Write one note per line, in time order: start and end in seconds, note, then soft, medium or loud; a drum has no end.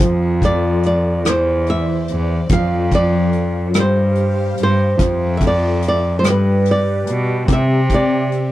0.00 1.27 F2 medium
0.00 1.22 F3 medium
0.00 1.25 F3 medium
0.00 1.25 F4 medium
0.00 1.25 A4 medium
0.00 0.39 C5 medium
0.00 3.72 D5 medium
0.00 kick medium
0.42 0.85 D5 medium
0.42 kick medium
0.42 closed hi-hat soft
0.83 1.24 D5 medium
0.83 closed hi-hat soft
1.25 1.97 E2 medium
1.25 2.47 E3 medium
1.25 2.50 E3 medium
1.25 2.50 E4 medium
1.25 2.50 C5 medium
1.25 1.69 C5 medium
1.25 cross-stick medium
1.25 closed hi-hat medium
1.67 2.52 E5 medium
1.67 closed hi-hat soft
2.08 2.45 E2 medium
2.08 closed hi-hat soft
2.49 3.77 F2 loud
2.49 3.72 F3 medium
2.49 3.75 F3 medium
2.49 3.74 F4 medium
2.49 3.74 A4 medium
2.49 2.94 F5 loud
2.49 kick medium
2.49 closed hi-hat medium
2.92 3.79 D5 medium
2.92 kick medium
2.92 closed hi-hat soft
3.33 closed hi-hat soft
3.74 4.46 G2 medium
3.74 4.96 G3 medium
3.74 4.99 G3 medium
3.74 4.99 G4 medium
3.74 4.99 C5 medium
3.74 4.99 F5 medium
3.74 cross-stick medium
3.74 closed hi-hat medium
3.80 4.62 C5 medium
4.15 closed hi-hat soft
4.57 4.93 G2 medium
4.57 closed hi-hat soft
4.63 5.37 C5 medium
4.98 6.26 F2 loud
4.98 6.19 F3 medium
4.98 6.24 F4 medium
4.98 6.24 E5 medium
4.98 kick medium
4.98 closed hi-hat medium
5.02 6.24 F3 medium
5.02 6.24 A4 medium
5.37 5.43 E5 medium
5.37 kick medium
5.37 closed hi-hat soft
5.47 5.83 D5 medium
5.82 closed hi-hat medium
5.88 6.18 D5 medium
6.19 6.25 C5 medium
6.23 6.95 G2 medium
6.23 7.44 G3 medium
6.23 7.48 G3 medium
6.23 8.52 G4 medium
6.23 7.48 B4 medium
6.23 7.48 D5 medium
6.23 cross-stick medium
6.23 closed hi-hat medium
6.30 6.70 B4 medium
6.65 closed hi-hat medium
6.71 7.47 D5 medium
7.07 7.43 B2 medium
7.07 closed hi-hat medium
7.48 8.52 C3 medium
7.48 8.52 C3 loud
7.48 8.52 C3 medium
7.48 8.52 C4 medium
7.48 8.52 E5 medium
7.48 kick medium
7.48 closed hi-hat medium
7.53 7.93 E5 medium
7.90 kick medium
7.90 closed hi-hat soft
7.94 8.52 D5 medium
8.32 closed hi-hat soft